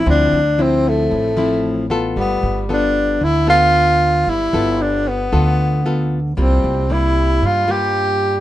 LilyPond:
<<
  \new Staff \with { instrumentName = "Tenor saxophone" } { \time 4/4 \key g \dorian \tempo 4 = 114 d'4 c'8 a2 r8 | b4 d'4 e'8 f'4. | e'4 d'8 b2 r8 | c'4 e'4 f'8 g'4. | }
  \new Staff \with { instrumentName = "Nylon-string guitar" } { \time 4/4 \key g \dorian << { <f c' e'>8 r8 <f c' e'>4. <f c' e'>4 <b f' a'>8~ | <b f' a'>4 <b f' a'>4 r8 <b f' a'>4.~ | <b f' a'>8 <b f' a'>4. <b f' a'>4 <b f' a'>8 r8 | <g bes f'>4 <g bes>4. <g bes f'>4. | } \\ { d2 a,2 | g2 d2 | g2 d2 | c2 g,2 | } >> }
  \new Staff \with { instrumentName = "Upright bass" } { \clef bass \time 4/4 \key g \dorian d,8 d,4. a,,2 | g,,8 g,,4. d,2 | g,,8 g,,4. d,2 | c,8 c,4. g,2 | }
>>